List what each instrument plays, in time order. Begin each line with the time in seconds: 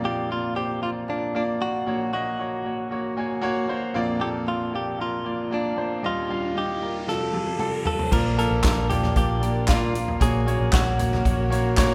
Already playing: grand piano A#1 F2 A#3 F4 D5
0.03 grand piano A#3 F4 D5, clean electric guitar G4
0.29 grand piano A#3 F4 D5, clean electric guitar F4
0.55 grand piano A#3 F4 C5, clean electric guitar G4
0.82 grand piano A#3 F4 D5, clean electric guitar F4
1.08 grand piano A#3 F4 D5, clean electric guitar D4
1.35 grand piano A#3 F4 D5, clean electric guitar D4
1.61 grand piano A#3 F4 D5, clean electric guitar F#4
1.86 grand piano A#1 A#2 A#3 F#4 C#5
2.13 grand piano A#3 F#4 D#5, clean electric guitar F#4
2.39 grand piano A#3 F#4 C#5
2.65 grand piano A#3 F#4 C#5
2.91 grand piano A#3 F#4 C#5
3.17 grand piano A#3 F#4 C#5 G#5
3.41 grand piano A#3 F#4 C#5 F#5
3.68 grand piano A#3 F#4 C5 F5
3.94 grand piano A#1 F2 A#3 F4 D5, riser
4.19 grand piano A#3 F4 A4, clean electric guitar G4
4.46 grand piano A#3 F4 D5, clean electric guitar F4
4.72 grand piano A#3 F4 D5, clean electric guitar G4
4.98 grand piano A#3 F4 A#4, clean electric guitar F4
5.25 grand piano A#3 F4 D5
5.51 grand piano A#3 F4 D5, clean electric guitar D4
5.77 grand piano A#3 F4 C5
6.03 grand piano D#2 A#2 G3 F4 D#5, clean electric guitar F4
6.29 grand piano G3 F4 F5
6.55 grand piano G3 F4 D#5, clean electric guitar G4
6.81 grand piano G3 F4 A#4
7.07 grand piano F2 C3 G3 F4 A4, clean electric guitar A4, snare
7.33 grand piano G3 F4 A4, high tom
7.46 high tom
7.59 grand piano G3 F4 A4, mid tom
7.84 grand piano G3 F4 A4, clean electric guitar A4, floor tom
7.99 floor tom
8.11 fingered electric bass A#1, grand piano A#2 F3 A#3 F4 D5, analog synth pad F3 A#3 D4, clean electric guitar A#4, kick, crash
8.37 grand piano A#3 F4 A4, clean electric guitar A#4, closed hi-hat
8.51 fingered electric bass A#1
8.63 fingered electric bass A#1, grand piano A#3 F4 D5, kick, snare, clap, closed hi-hat
8.90 grand piano A#3 F4 D5, clean electric guitar G4, closed hi-hat, floor tom
9.03 snare, floor tom
9.16 fingered electric bass A#1, grand piano A#3 F4 D5, clean electric guitar G4, kick, closed hi-hat
9.41 grand piano A#3 F4 D5, closed hi-hat
9.68 grand piano A#3 F4 D5, clean electric guitar F4, kick, snare, clap, closed hi-hat
9.94 grand piano A#3 F4 D5, closed hi-hat
10.08 floor tom
10.20 fingered electric bass A#1, grand piano A#2 A#3 F#4 C#5, analog synth pad F#3 A#3 C#4, clean electric guitar G#4, kick, closed hi-hat
10.46 grand piano A#3 F#4 C#5, closed hi-hat
10.60 fingered electric bass A#1
10.72 fingered electric bass A#1, grand piano A#3 F#4 C#5, clean electric guitar F#4, kick, snare, clap, closed hi-hat
10.98 grand piano A#3 F#4 C#5, closed hi-hat, floor tom
11.13 snare, floor tom
11.25 fingered electric bass A#1, grand piano A#3 F#4 C#5, kick, closed hi-hat
11.50 grand piano A#3 F#4 C#5, closed hi-hat
11.77 grand piano A#3 F#4 C#5, kick, snare, clap, closed hi-hat